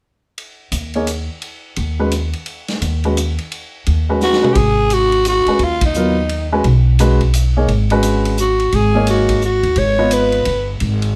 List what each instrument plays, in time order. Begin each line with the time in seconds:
0.38 ride
0.72 upright bass D#2, hi-hat pedal, ride
0.94 grand piano A#3 D#4 G#4 C#5, ride
1.07 hi-hat pedal, ride
1.42 ride
1.76 upright bass D#2, ride
1.99 grand piano G#3 C#4 F#4 B4
2.12 hi-hat pedal, ride
2.33 ride
2.46 ride
2.68 snare, ride
2.81 upright bass D#2, hi-hat pedal, ride
3.04 grand piano G#3 C#4 F#4 B4, ride
3.17 hi-hat pedal, ride
3.38 ride
3.52 ride
3.86 upright bass D#2, ride
4.09 grand piano G#3 C#4 F#4 B4
4.21 alto saxophone F#4, snare, hi-hat pedal
4.33 snare
4.42 grand piano G#3 C#4 F#4 B4, mid tom
4.53 upright bass G#1, alto saxophone G4, kick, ride
4.57 alto saxophone G#4
4.90 alto saxophone F#4, hi-hat pedal, ride
5.12 ride
5.25 alto saxophone F#4, hi-hat pedal, ride
5.46 grand piano G#3 C#4 F#4 B4, muted upright bass stroke, ride
5.59 upright bass D#2, ride
5.64 alto saxophone F4
5.81 kick, ride
5.86 alto saxophone D#4
5.94 grand piano F#3 B3 F4 A#4, hi-hat pedal
6.29 ride
6.52 grand piano G#3 C#4 F#4 B4
6.64 upright bass B1, ride
6.99 grand piano G#3 C#4 F#4 B4, hi-hat pedal, ride
7.21 kick, ride
7.34 hi-hat pedal, ride
7.57 grand piano A#3 D#4 G#4 C#5
7.68 upright bass G#1, ride
7.90 grand piano G#3 C#4 F#4 B4, ride
8.03 hi-hat pedal, ride
8.25 ride
8.37 alto saxophone F#4, hi-hat pedal
8.60 ride
8.72 upright bass G#1, alto saxophone G#4, ride
8.95 grand piano A#3 D#4 G#4 C#5
9.07 alto saxophone F#4, hi-hat pedal, ride
9.29 kick, ride
9.42 alto saxophone F#4, hi-hat pedal
9.63 upright bass D#2, ride
9.76 upright bass G#1, alto saxophone C#5, ride
9.99 grand piano B3 F4 B4 D#5
10.11 alto saxophone B4, hi-hat pedal, ride
10.32 ride
10.45 upright bass G1, ride
10.80 upright bass G#1, ride
11.02 ride